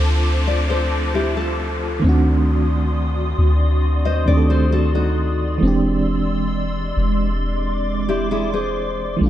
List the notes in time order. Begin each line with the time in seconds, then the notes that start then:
Already playing: D2 F3 A3 C4 D4 F4 A4 C5 A5 D6, downlifter
0.47 D5
0.70 A4 C5
1.15 E4 G4
1.37 F4 A4
2.00 D#3 A3 F#4 D5 C6 D#6
2.04 D2 C4 D4
2.09 F#4
3.39 D2
4.05 D#2 C5 D#5
4.26 D2 D#3 A3 C4 D4 D5
4.30 G4
4.37 A4
4.50 A4 C5
4.72 F#4 A4
4.95 D#4 F#4
5.58 E3 G#3
5.62 E1 G#3 C4 D4 C6 E6
5.67 G4
6.97 E1
7.41 D6
8.09 E4 G4
8.31 E4 G#4
8.53 G#4 C5
9.17 E3 G3
9.21 A1 A3 D4 G4 A5 E6
9.26 F4